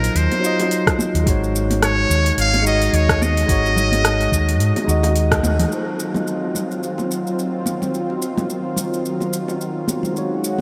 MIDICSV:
0, 0, Header, 1, 6, 480
1, 0, Start_track
1, 0, Tempo, 555556
1, 1094, Time_signature, 4, 2, 24, 8
1, 9168, End_track
2, 0, Start_track
2, 0, Title_t, "Muted trumpet"
2, 0, Program_c, 0, 59
2, 0, Note_on_c, 0, 70, 97
2, 141, Note_on_c, 0, 72, 100
2, 154, Note_off_c, 0, 70, 0
2, 857, Note_off_c, 0, 72, 0
2, 1590, Note_on_c, 0, 73, 106
2, 2029, Note_off_c, 0, 73, 0
2, 2072, Note_on_c, 0, 77, 121
2, 2287, Note_off_c, 0, 77, 0
2, 2306, Note_on_c, 0, 75, 102
2, 2548, Note_on_c, 0, 73, 97
2, 2561, Note_off_c, 0, 75, 0
2, 2787, Note_on_c, 0, 75, 108
2, 2800, Note_off_c, 0, 73, 0
2, 4460, Note_off_c, 0, 75, 0
2, 9168, End_track
3, 0, Start_track
3, 0, Title_t, "Tine electric piano"
3, 0, Program_c, 1, 4
3, 0, Control_c, 1, 64, 127
3, 0, Note_on_c, 1, 54, 89
3, 0, Note_on_c, 1, 63, 82
3, 0, Note_on_c, 1, 65, 78
3, 0, Note_on_c, 1, 72, 98
3, 0, Note_on_c, 1, 75, 96
3, 335, Note_off_c, 1, 54, 0
3, 345, Note_on_c, 1, 54, 96
3, 348, Note_off_c, 1, 63, 0
3, 358, Note_off_c, 1, 65, 0
3, 363, Note_on_c, 1, 63, 79
3, 367, Note_off_c, 1, 72, 0
3, 382, Note_on_c, 1, 65, 82
3, 400, Note_off_c, 1, 75, 0
3, 400, Note_on_c, 1, 75, 99
3, 1055, Note_off_c, 1, 54, 0
3, 1064, Note_off_c, 1, 63, 0
3, 1068, Note_on_c, 1, 56, 88
3, 1073, Note_off_c, 1, 65, 0
3, 1082, Note_off_c, 1, 75, 0
3, 1085, Note_on_c, 1, 63, 81
3, 1103, Note_on_c, 1, 66, 86
3, 1104, Control_c, 1, 64, 0
3, 1121, Note_on_c, 1, 73, 95
3, 1274, Control_c, 1, 64, 127
3, 2255, Note_off_c, 1, 56, 0
3, 2266, Note_on_c, 1, 56, 90
3, 2269, Note_off_c, 1, 63, 0
3, 2278, Note_off_c, 1, 66, 0
3, 2285, Note_on_c, 1, 63, 84
3, 2287, Note_off_c, 1, 73, 0
3, 2302, Note_on_c, 1, 66, 79
3, 2320, Note_on_c, 1, 75, 95
3, 2975, Note_off_c, 1, 56, 0
3, 2985, Note_off_c, 1, 63, 0
3, 2987, Note_on_c, 1, 56, 89
3, 2993, Note_off_c, 1, 66, 0
3, 3002, Note_off_c, 1, 75, 0
3, 3004, Note_on_c, 1, 63, 85
3, 3021, Note_on_c, 1, 66, 84
3, 3041, Note_on_c, 1, 73, 101
3, 4177, Note_off_c, 1, 56, 0
3, 4188, Note_off_c, 1, 63, 0
3, 4188, Note_on_c, 1, 56, 89
3, 4197, Note_off_c, 1, 66, 0
3, 4206, Note_on_c, 1, 63, 87
3, 4207, Note_off_c, 1, 73, 0
3, 4224, Note_on_c, 1, 66, 81
3, 4243, Note_on_c, 1, 75, 107
3, 4896, Note_off_c, 1, 56, 0
3, 4905, Note_off_c, 1, 63, 0
3, 4906, Note_on_c, 1, 54, 56
3, 4914, Note_off_c, 1, 66, 0
3, 4923, Note_on_c, 1, 63, 58
3, 4924, Note_off_c, 1, 75, 0
3, 4940, Note_on_c, 1, 65, 54
3, 4944, Control_c, 1, 64, 0
3, 4959, Note_on_c, 1, 72, 65
3, 5092, Control_c, 1, 64, 127
3, 8735, Note_off_c, 1, 54, 0
3, 8744, Note_off_c, 1, 63, 0
3, 8745, Note_on_c, 1, 56, 63
3, 8752, Note_off_c, 1, 65, 0
3, 8762, Note_off_c, 1, 72, 0
3, 8763, Note_on_c, 1, 63, 61
3, 8781, Note_on_c, 1, 66, 61
3, 8785, Control_c, 1, 64, 0
3, 8799, Note_on_c, 1, 73, 69
3, 8923, Control_c, 1, 64, 127
3, 9168, Note_off_c, 1, 56, 0
3, 9168, Note_off_c, 1, 63, 0
3, 9168, Note_off_c, 1, 66, 0
3, 9168, Note_off_c, 1, 73, 0
3, 9168, End_track
4, 0, Start_track
4, 0, Title_t, "Analog synth pad"
4, 0, Program_c, 2, 89
4, 4934, Note_on_c, 2, 51, 74
4, 4934, Note_on_c, 2, 54, 70
4, 4934, Note_on_c, 2, 60, 70
4, 4934, Note_on_c, 2, 65, 85
4, 8739, Note_off_c, 2, 54, 0
4, 8739, Note_off_c, 2, 60, 0
4, 8739, Note_off_c, 2, 65, 0
4, 8773, Note_on_c, 2, 56, 75
4, 8773, Note_on_c, 2, 61, 71
4, 8773, Note_on_c, 2, 66, 89
4, 9168, Note_off_c, 2, 51, 0
4, 9168, Note_off_c, 2, 56, 0
4, 9168, Note_off_c, 2, 61, 0
4, 9168, Note_off_c, 2, 66, 0
4, 9168, End_track
5, 0, Start_track
5, 0, Title_t, "Fingered electric bass"
5, 0, Program_c, 3, 33
5, 131, Note_on_c, 3, 39, 97
5, 225, Note_off_c, 3, 39, 0
5, 990, Note_on_c, 3, 39, 79
5, 1060, Note_off_c, 3, 39, 0
5, 1092, Note_on_c, 3, 32, 98
5, 1759, Note_off_c, 3, 32, 0
5, 1812, Note_on_c, 3, 39, 73
5, 1986, Note_off_c, 3, 39, 0
5, 2051, Note_on_c, 3, 32, 93
5, 2478, Note_off_c, 3, 32, 0
5, 2532, Note_on_c, 3, 39, 85
5, 2959, Note_off_c, 3, 39, 0
5, 3011, Note_on_c, 3, 32, 90
5, 3679, Note_off_c, 3, 32, 0
5, 3733, Note_on_c, 3, 39, 75
5, 3976, Note_off_c, 3, 39, 0
5, 3976, Note_on_c, 3, 44, 94
5, 4068, Note_off_c, 3, 44, 0
5, 4214, Note_on_c, 3, 39, 89
5, 4689, Note_off_c, 3, 39, 0
5, 4694, Note_on_c, 3, 39, 80
5, 4867, Note_off_c, 3, 39, 0
5, 9168, End_track
6, 0, Start_track
6, 0, Title_t, "Drums"
6, 34, Note_on_c, 9, 46, 44
6, 41, Note_on_c, 9, 82, 34
6, 120, Note_off_c, 9, 46, 0
6, 127, Note_off_c, 9, 82, 0
6, 135, Note_on_c, 9, 46, 59
6, 143, Note_on_c, 9, 82, 44
6, 222, Note_off_c, 9, 46, 0
6, 229, Note_off_c, 9, 82, 0
6, 272, Note_on_c, 9, 46, 30
6, 274, Note_on_c, 9, 60, 51
6, 274, Note_on_c, 9, 63, 61
6, 359, Note_off_c, 9, 46, 0
6, 360, Note_off_c, 9, 60, 0
6, 360, Note_off_c, 9, 63, 0
6, 383, Note_on_c, 9, 82, 75
6, 469, Note_off_c, 9, 82, 0
6, 514, Note_on_c, 9, 46, 44
6, 517, Note_on_c, 9, 60, 67
6, 521, Note_on_c, 9, 82, 32
6, 601, Note_off_c, 9, 46, 0
6, 603, Note_off_c, 9, 60, 0
6, 608, Note_off_c, 9, 82, 0
6, 615, Note_on_c, 9, 46, 54
6, 622, Note_on_c, 9, 82, 44
6, 701, Note_off_c, 9, 46, 0
6, 708, Note_off_c, 9, 82, 0
6, 751, Note_on_c, 9, 36, 100
6, 754, Note_on_c, 9, 37, 74
6, 754, Note_on_c, 9, 46, 29
6, 761, Note_on_c, 9, 82, 28
6, 837, Note_off_c, 9, 36, 0
6, 841, Note_off_c, 9, 37, 0
6, 841, Note_off_c, 9, 46, 0
6, 848, Note_off_c, 9, 82, 0
6, 854, Note_on_c, 9, 63, 100
6, 863, Note_on_c, 9, 82, 80
6, 940, Note_off_c, 9, 63, 0
6, 950, Note_off_c, 9, 82, 0
6, 995, Note_on_c, 9, 46, 46
6, 1002, Note_on_c, 9, 82, 35
6, 1081, Note_off_c, 9, 46, 0
6, 1088, Note_off_c, 9, 82, 0
6, 1093, Note_on_c, 9, 36, 116
6, 1096, Note_on_c, 9, 46, 55
6, 1103, Note_on_c, 9, 82, 44
6, 1179, Note_off_c, 9, 36, 0
6, 1182, Note_off_c, 9, 46, 0
6, 1190, Note_off_c, 9, 82, 0
6, 1242, Note_on_c, 9, 82, 30
6, 1329, Note_off_c, 9, 82, 0
6, 1344, Note_on_c, 9, 82, 70
6, 1430, Note_off_c, 9, 82, 0
6, 1473, Note_on_c, 9, 63, 90
6, 1475, Note_on_c, 9, 46, 44
6, 1482, Note_on_c, 9, 82, 31
6, 1559, Note_off_c, 9, 63, 0
6, 1561, Note_off_c, 9, 46, 0
6, 1568, Note_off_c, 9, 82, 0
6, 1577, Note_on_c, 9, 37, 76
6, 1577, Note_on_c, 9, 46, 56
6, 1584, Note_on_c, 9, 82, 45
6, 1663, Note_off_c, 9, 37, 0
6, 1663, Note_off_c, 9, 46, 0
6, 1670, Note_off_c, 9, 82, 0
6, 1822, Note_on_c, 9, 82, 79
6, 1908, Note_off_c, 9, 82, 0
6, 1953, Note_on_c, 9, 46, 49
6, 1960, Note_on_c, 9, 82, 33
6, 2039, Note_off_c, 9, 46, 0
6, 2046, Note_off_c, 9, 82, 0
6, 2056, Note_on_c, 9, 46, 56
6, 2063, Note_on_c, 9, 82, 43
6, 2142, Note_off_c, 9, 46, 0
6, 2150, Note_off_c, 9, 82, 0
6, 2189, Note_on_c, 9, 60, 51
6, 2193, Note_on_c, 9, 46, 34
6, 2194, Note_on_c, 9, 63, 56
6, 2276, Note_off_c, 9, 60, 0
6, 2279, Note_off_c, 9, 46, 0
6, 2281, Note_off_c, 9, 63, 0
6, 2302, Note_on_c, 9, 82, 73
6, 2388, Note_off_c, 9, 82, 0
6, 2433, Note_on_c, 9, 46, 44
6, 2440, Note_on_c, 9, 82, 33
6, 2519, Note_off_c, 9, 46, 0
6, 2527, Note_off_c, 9, 82, 0
6, 2537, Note_on_c, 9, 46, 54
6, 2544, Note_on_c, 9, 82, 41
6, 2623, Note_off_c, 9, 46, 0
6, 2630, Note_off_c, 9, 82, 0
6, 2670, Note_on_c, 9, 36, 98
6, 2673, Note_on_c, 9, 37, 77
6, 2673, Note_on_c, 9, 46, 32
6, 2681, Note_on_c, 9, 82, 27
6, 2757, Note_off_c, 9, 36, 0
6, 2760, Note_off_c, 9, 37, 0
6, 2760, Note_off_c, 9, 46, 0
6, 2767, Note_off_c, 9, 82, 0
6, 2782, Note_on_c, 9, 63, 85
6, 2783, Note_on_c, 9, 82, 74
6, 2869, Note_off_c, 9, 63, 0
6, 2869, Note_off_c, 9, 82, 0
6, 2915, Note_on_c, 9, 46, 47
6, 2922, Note_on_c, 9, 82, 32
6, 3001, Note_off_c, 9, 46, 0
6, 3008, Note_off_c, 9, 82, 0
6, 3012, Note_on_c, 9, 36, 115
6, 3017, Note_on_c, 9, 46, 59
6, 3024, Note_on_c, 9, 82, 40
6, 3099, Note_off_c, 9, 36, 0
6, 3103, Note_off_c, 9, 46, 0
6, 3110, Note_off_c, 9, 82, 0
6, 3157, Note_on_c, 9, 60, 37
6, 3161, Note_on_c, 9, 82, 32
6, 3244, Note_off_c, 9, 60, 0
6, 3247, Note_off_c, 9, 82, 0
6, 3253, Note_on_c, 9, 64, 74
6, 3263, Note_on_c, 9, 82, 81
6, 3339, Note_off_c, 9, 64, 0
6, 3349, Note_off_c, 9, 82, 0
6, 3387, Note_on_c, 9, 63, 91
6, 3394, Note_on_c, 9, 46, 46
6, 3401, Note_on_c, 9, 82, 31
6, 3473, Note_off_c, 9, 63, 0
6, 3480, Note_off_c, 9, 46, 0
6, 3487, Note_off_c, 9, 82, 0
6, 3497, Note_on_c, 9, 37, 79
6, 3497, Note_on_c, 9, 46, 61
6, 3504, Note_on_c, 9, 82, 44
6, 3583, Note_off_c, 9, 37, 0
6, 3583, Note_off_c, 9, 46, 0
6, 3590, Note_off_c, 9, 82, 0
6, 3634, Note_on_c, 9, 46, 32
6, 3641, Note_on_c, 9, 82, 31
6, 3720, Note_off_c, 9, 46, 0
6, 3728, Note_off_c, 9, 82, 0
6, 3733, Note_on_c, 9, 36, 60
6, 3743, Note_on_c, 9, 82, 84
6, 3819, Note_off_c, 9, 36, 0
6, 3830, Note_off_c, 9, 82, 0
6, 3876, Note_on_c, 9, 46, 50
6, 3883, Note_on_c, 9, 82, 31
6, 3962, Note_off_c, 9, 46, 0
6, 3970, Note_off_c, 9, 82, 0
6, 3977, Note_on_c, 9, 46, 58
6, 3984, Note_on_c, 9, 82, 42
6, 4064, Note_off_c, 9, 46, 0
6, 4071, Note_off_c, 9, 82, 0
6, 4115, Note_on_c, 9, 46, 35
6, 4115, Note_on_c, 9, 60, 55
6, 4119, Note_on_c, 9, 63, 69
6, 4122, Note_on_c, 9, 82, 29
6, 4202, Note_off_c, 9, 46, 0
6, 4202, Note_off_c, 9, 60, 0
6, 4205, Note_off_c, 9, 63, 0
6, 4209, Note_off_c, 9, 82, 0
6, 4224, Note_on_c, 9, 82, 78
6, 4311, Note_off_c, 9, 82, 0
6, 4349, Note_on_c, 9, 60, 71
6, 4354, Note_on_c, 9, 46, 47
6, 4361, Note_on_c, 9, 82, 30
6, 4435, Note_off_c, 9, 60, 0
6, 4441, Note_off_c, 9, 46, 0
6, 4448, Note_off_c, 9, 82, 0
6, 4454, Note_on_c, 9, 46, 53
6, 4461, Note_on_c, 9, 82, 41
6, 4541, Note_off_c, 9, 46, 0
6, 4548, Note_off_c, 9, 82, 0
6, 4591, Note_on_c, 9, 36, 103
6, 4593, Note_on_c, 9, 37, 73
6, 4593, Note_on_c, 9, 46, 31
6, 4601, Note_on_c, 9, 82, 28
6, 4678, Note_off_c, 9, 36, 0
6, 4680, Note_off_c, 9, 37, 0
6, 4680, Note_off_c, 9, 46, 0
6, 4687, Note_off_c, 9, 82, 0
6, 4694, Note_on_c, 9, 48, 57
6, 4695, Note_on_c, 9, 63, 82
6, 4701, Note_on_c, 9, 82, 71
6, 4781, Note_off_c, 9, 48, 0
6, 4782, Note_off_c, 9, 63, 0
6, 4788, Note_off_c, 9, 82, 0
6, 4834, Note_on_c, 9, 46, 47
6, 4834, Note_on_c, 9, 47, 75
6, 4841, Note_on_c, 9, 82, 35
6, 4920, Note_off_c, 9, 46, 0
6, 4920, Note_off_c, 9, 47, 0
6, 4927, Note_off_c, 9, 82, 0
6, 4942, Note_on_c, 9, 82, 35
6, 5028, Note_off_c, 9, 82, 0
6, 5180, Note_on_c, 9, 82, 65
6, 5267, Note_off_c, 9, 82, 0
6, 5309, Note_on_c, 9, 64, 76
6, 5312, Note_on_c, 9, 63, 75
6, 5320, Note_on_c, 9, 82, 26
6, 5395, Note_off_c, 9, 64, 0
6, 5399, Note_off_c, 9, 63, 0
6, 5406, Note_off_c, 9, 82, 0
6, 5421, Note_on_c, 9, 82, 38
6, 5507, Note_off_c, 9, 82, 0
6, 5659, Note_on_c, 9, 64, 63
6, 5662, Note_on_c, 9, 82, 69
6, 5745, Note_off_c, 9, 64, 0
6, 5749, Note_off_c, 9, 82, 0
6, 5800, Note_on_c, 9, 82, 28
6, 5887, Note_off_c, 9, 82, 0
6, 5901, Note_on_c, 9, 82, 38
6, 5988, Note_off_c, 9, 82, 0
6, 6031, Note_on_c, 9, 60, 46
6, 6038, Note_on_c, 9, 63, 45
6, 6041, Note_on_c, 9, 82, 26
6, 6117, Note_off_c, 9, 60, 0
6, 6124, Note_off_c, 9, 63, 0
6, 6127, Note_off_c, 9, 82, 0
6, 6143, Note_on_c, 9, 82, 62
6, 6230, Note_off_c, 9, 82, 0
6, 6281, Note_on_c, 9, 82, 27
6, 6367, Note_off_c, 9, 82, 0
6, 6383, Note_on_c, 9, 82, 38
6, 6470, Note_off_c, 9, 82, 0
6, 6616, Note_on_c, 9, 63, 80
6, 6622, Note_on_c, 9, 82, 64
6, 6703, Note_off_c, 9, 63, 0
6, 6709, Note_off_c, 9, 82, 0
6, 6756, Note_on_c, 9, 64, 64
6, 6761, Note_on_c, 9, 82, 27
6, 6842, Note_off_c, 9, 64, 0
6, 6848, Note_off_c, 9, 82, 0
6, 6864, Note_on_c, 9, 82, 35
6, 6950, Note_off_c, 9, 82, 0
6, 6997, Note_on_c, 9, 60, 28
6, 7083, Note_off_c, 9, 60, 0
6, 7103, Note_on_c, 9, 82, 65
6, 7189, Note_off_c, 9, 82, 0
6, 7235, Note_on_c, 9, 64, 83
6, 7237, Note_on_c, 9, 63, 85
6, 7240, Note_on_c, 9, 82, 28
6, 7322, Note_off_c, 9, 64, 0
6, 7323, Note_off_c, 9, 63, 0
6, 7327, Note_off_c, 9, 82, 0
6, 7342, Note_on_c, 9, 82, 39
6, 7428, Note_off_c, 9, 82, 0
6, 7573, Note_on_c, 9, 64, 66
6, 7581, Note_on_c, 9, 82, 73
6, 7659, Note_off_c, 9, 64, 0
6, 7668, Note_off_c, 9, 82, 0
6, 7721, Note_on_c, 9, 82, 31
6, 7807, Note_off_c, 9, 82, 0
6, 7823, Note_on_c, 9, 82, 38
6, 7909, Note_off_c, 9, 82, 0
6, 7953, Note_on_c, 9, 60, 41
6, 7953, Note_on_c, 9, 63, 54
6, 7961, Note_on_c, 9, 82, 29
6, 8039, Note_off_c, 9, 60, 0
6, 8039, Note_off_c, 9, 63, 0
6, 8047, Note_off_c, 9, 82, 0
6, 8063, Note_on_c, 9, 82, 71
6, 8149, Note_off_c, 9, 82, 0
6, 8193, Note_on_c, 9, 60, 51
6, 8202, Note_on_c, 9, 82, 27
6, 8280, Note_off_c, 9, 60, 0
6, 8288, Note_off_c, 9, 82, 0
6, 8303, Note_on_c, 9, 82, 37
6, 8389, Note_off_c, 9, 82, 0
6, 8534, Note_on_c, 9, 63, 82
6, 8541, Note_on_c, 9, 82, 67
6, 8620, Note_off_c, 9, 63, 0
6, 8627, Note_off_c, 9, 82, 0
6, 8667, Note_on_c, 9, 64, 62
6, 8681, Note_on_c, 9, 82, 31
6, 8754, Note_off_c, 9, 64, 0
6, 8767, Note_off_c, 9, 82, 0
6, 8782, Note_on_c, 9, 82, 37
6, 8868, Note_off_c, 9, 82, 0
6, 9020, Note_on_c, 9, 82, 68
6, 9107, Note_off_c, 9, 82, 0
6, 9168, End_track
0, 0, End_of_file